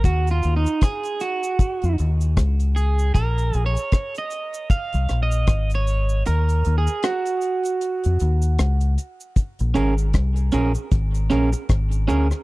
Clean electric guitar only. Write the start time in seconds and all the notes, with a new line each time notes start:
0.05 F#4
0.31 F4
0.57 D#4
0.83 G#4
1.21 F#4
2.76 G#4
3.14 A#4
3.66 C#5
4.18 D#5
4.71 F5
5.23 D#5
5.75 C#5
6.27 A#4
6.78 G#4
7.04 F#4
9.74 C#4 G#4 A#4
10.52 C#4 G#4 A#4
11.30 C#4 G#4 A#4
11.53 muted clean electric guitar stroke
12.08 C#4 G#4 A#4